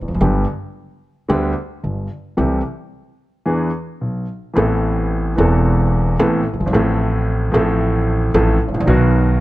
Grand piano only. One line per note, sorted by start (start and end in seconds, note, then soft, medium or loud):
0.02 0.09 E2 soft
0.08 0.15 F2 medium
0.15 0.21 F#2 medium
0.21 0.44 G1 medium
0.21 0.44 G2 medium
0.21 0.44 D3 medium
0.21 0.44 G3 medium
0.21 0.44 B3 medium
0.21 0.44 G4 medium
1.28 1.52 D2 medium
1.28 1.52 D3 medium
1.28 1.52 G3 medium
1.28 1.52 B3 medium
1.28 1.52 G4 medium
1.84 2.06 G1 soft
1.84 2.06 G2 soft
2.37 2.60 C2 medium
2.37 2.60 C3 medium
2.37 2.60 E3 medium
2.37 2.60 A3 medium
2.37 2.60 C4 medium
2.37 2.60 G4 medium
3.46 3.69 E2 medium
3.46 3.69 E3 medium
3.46 3.69 B3 medium
3.46 3.69 D4 medium
3.46 3.69 G#4 medium
4.01 4.25 B1 soft
4.01 4.25 B2 soft
4.54 5.34 A1 medium
4.54 5.34 A2 medium
4.54 5.33 E3 medium
4.54 5.33 B3 medium
4.54 5.34 C4 medium
4.58 5.35 A4 medium
5.36 6.15 E1 medium
5.36 6.15 E2 medium
5.36 6.14 E3 medium
5.36 6.15 B3 medium
5.36 6.16 C4 medium
5.40 6.16 A4 medium
6.19 6.42 A1 medium
6.19 6.42 A2 medium
6.19 6.42 E3 medium
6.19 6.42 B3 medium
6.19 6.42 C4 medium
6.19 6.42 A4 medium
6.53 6.60 F#1 medium
6.60 6.67 G1 medium
6.66 6.73 G#1 medium
6.71 7.50 A1 medium
6.71 7.50 A2 medium
6.71 7.49 F3 medium
6.71 7.50 A3 medium
6.71 7.50 C4 medium
6.71 7.51 A4 medium
7.52 8.30 A1 medium
7.52 8.30 A2 medium
7.52 8.29 F3 medium
7.52 8.30 A3 medium
7.52 8.31 C4 medium
7.52 8.31 A4 medium
8.34 8.57 A1 loud
8.34 8.57 A2 medium
8.34 8.57 F3 medium
8.34 8.57 A3 medium
8.34 8.57 C4 medium
8.34 8.57 A4 medium
8.68 8.74 G#1 medium
8.74 8.81 A1 medium
8.80 8.87 A#1 medium
8.86 9.40 B1 medium
8.86 9.40 B2 medium
8.86 9.40 D#3 medium
8.86 9.40 F#3 medium
8.86 9.40 B3 medium
8.86 9.40 F#4 medium